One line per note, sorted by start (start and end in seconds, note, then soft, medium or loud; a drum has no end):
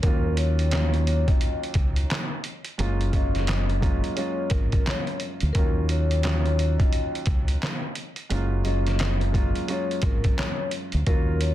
0.02 1.24 D#2 loud
0.02 0.68 D#2 medium
0.02 0.69 F#3 medium
0.02 0.69 A#3 medium
0.02 0.69 C#4 medium
0.02 0.34 A#4 loud
0.02 kick loud
0.02 closed hi-hat medium
0.07 0.70 F4 loud
0.37 0.69 C#5 medium
0.37 closed hi-hat medium
0.59 closed hi-hat soft
0.71 2.33 D#2 medium
0.71 2.34 F#3 medium
0.71 2.34 A#3 medium
0.71 2.34 C#4 medium
0.71 2.35 F4 medium
0.71 1.25 C#5 medium
0.71 snare loud
0.71 clap medium
0.71 closed hi-hat loud
0.94 closed hi-hat soft
1.07 closed hi-hat medium
1.27 1.59 D#5 medium
1.27 kick medium
1.27 closed hi-hat soft
1.41 closed hi-hat medium
1.63 closed hi-hat soft
1.74 2.04 C#2 medium
1.74 kick medium
1.74 closed hi-hat medium
1.96 closed hi-hat medium
2.10 snare loud
2.10 clap medium
2.10 closed hi-hat medium
2.44 closed hi-hat medium
2.65 closed hi-hat soft
2.78 4.00 F#1 loud
2.78 3.10 F#2 medium
2.78 3.11 G#3 medium
2.78 3.12 A#3 medium
2.78 3.12 C#4 medium
2.78 3.12 F4 loud
2.78 closed hi-hat medium
3.01 closed hi-hat soft
3.12 3.78 F#2 medium
3.12 3.78 G#3 medium
3.12 3.78 A#3 medium
3.12 3.78 C#4 medium
3.12 3.79 F4 medium
3.12 4.14 D#5 medium
3.12 kick medium
3.12 closed hi-hat medium
3.35 snare soft
3.35 closed hi-hat medium
3.47 snare loud
3.47 clap medium
3.47 closed hi-hat loud
3.70 closed hi-hat soft
3.80 4.14 F#2 medium
3.80 4.14 G#3 medium
3.80 4.14 A#3 medium
3.80 4.15 C#4 medium
3.80 4.15 F4 medium
3.80 kick medium
3.80 closed hi-hat medium
4.04 closed hi-hat soft
4.16 5.46 F#2 medium
4.16 5.46 G#3 medium
4.16 5.47 A#3 medium
4.16 5.47 C#4 medium
4.16 5.47 F4 loud
4.16 4.48 C#5 medium
4.16 closed hi-hat medium
4.50 4.80 G#1 medium
4.50 4.82 A#4 medium
4.50 kick medium
4.50 closed hi-hat medium
4.72 kick medium
4.72 closed hi-hat medium
4.86 5.18 C#5 medium
4.86 snare loud
4.86 clap medium
4.86 closed hi-hat medium
5.07 closed hi-hat soft
5.20 closed hi-hat medium
5.40 5.53 D2 medium
5.40 closed hi-hat soft
5.53 6.76 D#2 loud
5.53 6.20 D#2 medium
5.53 6.21 F#3 medium
5.53 5.85 A#4 loud
5.53 kick loud
5.53 closed hi-hat medium
5.57 6.21 A#3 medium
5.57 6.21 C#4 medium
5.57 6.21 F4 medium
5.89 6.21 C#5 medium
5.89 closed hi-hat medium
6.11 closed hi-hat soft
6.22 7.85 D#2 medium
6.22 7.85 F#3 medium
6.22 7.86 A#3 medium
6.22 7.86 C#4 medium
6.22 7.86 F4 medium
6.22 snare loud
6.22 clap medium
6.22 closed hi-hat loud
6.46 closed hi-hat soft
6.59 closed hi-hat medium
6.78 7.10 D#5 medium
6.78 kick medium
6.78 closed hi-hat soft
6.93 closed hi-hat medium
7.15 closed hi-hat soft
7.26 7.55 C#2 medium
7.26 kick medium
7.26 closed hi-hat medium
7.48 closed hi-hat medium
7.62 snare loud
7.62 clap medium
7.62 closed hi-hat medium
7.95 closed hi-hat medium
8.16 closed hi-hat soft
8.30 9.52 F#1 loud
8.30 8.62 F#2 medium
8.30 8.63 G#3 medium
8.30 8.63 A#3 medium
8.30 8.64 C#4 medium
8.30 8.64 F4 loud
8.30 closed hi-hat medium
8.64 9.29 F#2 medium
8.64 9.30 G#3 medium
8.64 9.30 A#3 medium
8.64 9.30 C#4 medium
8.64 9.30 F4 medium
8.64 9.64 D#5 medium
8.64 closed hi-hat medium
8.87 snare soft
8.87 closed hi-hat medium
8.99 snare loud
8.99 clap medium
8.99 closed hi-hat loud
9.21 closed hi-hat soft
9.32 9.65 F#2 medium
9.32 9.66 G#3 medium
9.32 9.66 A#3 medium
9.32 9.66 C#4 medium
9.32 9.67 F4 loud
9.32 kick medium
9.32 closed hi-hat medium
9.55 closed hi-hat soft
9.68 10.98 F#2 medium
9.68 10.98 G#3 medium
9.68 10.98 A#3 medium
9.68 10.99 C#4 medium
9.68 10.99 F4 loud
9.68 10.01 C#5 medium
9.68 closed hi-hat medium
9.91 closed hi-hat soft
10.02 10.31 G#1 medium
10.02 10.35 A#4 medium
10.02 kick medium
10.02 closed hi-hat medium
10.24 kick medium
10.24 closed hi-hat medium
10.38 10.69 C#5 medium
10.38 snare loud
10.38 clap medium
10.38 closed hi-hat medium
10.71 closed hi-hat medium
10.92 11.05 D2 medium
10.92 closed hi-hat soft
11.06 11.54 D#2 loud
11.06 11.54 F#3 medium
11.06 11.54 A#3 medium
11.06 11.54 C#4 medium
11.06 11.54 F4 loud
11.06 11.38 A#4 loud
11.06 kick loud
11.06 closed hi-hat medium
11.41 11.54 C#5 medium
11.41 closed hi-hat medium